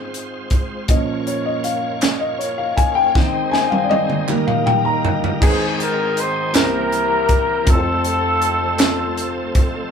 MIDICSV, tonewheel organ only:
0, 0, Header, 1, 2, 480
1, 0, Start_track
1, 0, Tempo, 753769
1, 569, Time_signature, 6, 3, 24, 8
1, 6311, End_track
2, 0, Start_track
2, 0, Title_t, "Tonewheel organ"
2, 0, Program_c, 0, 16
2, 0, Note_on_c, 0, 56, 62
2, 0, Note_on_c, 0, 60, 56
2, 0, Note_on_c, 0, 65, 55
2, 0, Note_on_c, 0, 72, 63
2, 542, Note_off_c, 0, 72, 0
2, 543, Note_off_c, 0, 56, 0
2, 553, Note_off_c, 0, 60, 0
2, 565, Note_on_c, 0, 58, 68
2, 569, Note_on_c, 0, 61, 59
2, 570, Note_on_c, 0, 73, 70
2, 1985, Note_off_c, 0, 65, 0
2, 1995, Note_off_c, 0, 58, 0
2, 1997, Note_off_c, 0, 61, 0
2, 1997, Note_off_c, 0, 73, 0
2, 2013, Note_on_c, 0, 51, 65
2, 2014, Note_on_c, 0, 60, 60
2, 2014, Note_on_c, 0, 63, 66
2, 2015, Note_on_c, 0, 56, 60
2, 2018, Note_on_c, 0, 72, 77
2, 2725, Note_off_c, 0, 51, 0
2, 2726, Note_off_c, 0, 60, 0
2, 2727, Note_off_c, 0, 56, 0
2, 2728, Note_off_c, 0, 72, 0
2, 2729, Note_on_c, 0, 55, 64
2, 2731, Note_on_c, 0, 70, 69
2, 2732, Note_on_c, 0, 58, 59
2, 3439, Note_off_c, 0, 63, 0
2, 3443, Note_off_c, 0, 55, 0
2, 3444, Note_off_c, 0, 70, 0
2, 3445, Note_off_c, 0, 58, 0
2, 3452, Note_on_c, 0, 56, 64
2, 3453, Note_on_c, 0, 68, 79
2, 3457, Note_on_c, 0, 51, 69
2, 3458, Note_on_c, 0, 60, 63
2, 4164, Note_off_c, 0, 56, 0
2, 4164, Note_off_c, 0, 68, 0
2, 4164, Note_on_c, 0, 58, 60
2, 4167, Note_off_c, 0, 51, 0
2, 4168, Note_on_c, 0, 67, 74
2, 4169, Note_on_c, 0, 52, 64
2, 4879, Note_off_c, 0, 58, 0
2, 4879, Note_off_c, 0, 60, 0
2, 4881, Note_off_c, 0, 67, 0
2, 4882, Note_off_c, 0, 52, 0
2, 4887, Note_on_c, 0, 53, 75
2, 4888, Note_on_c, 0, 57, 68
2, 4888, Note_on_c, 0, 60, 65
2, 4893, Note_on_c, 0, 69, 82
2, 6311, Note_off_c, 0, 53, 0
2, 6311, Note_off_c, 0, 57, 0
2, 6311, Note_off_c, 0, 60, 0
2, 6311, Note_off_c, 0, 69, 0
2, 6311, End_track
0, 0, End_of_file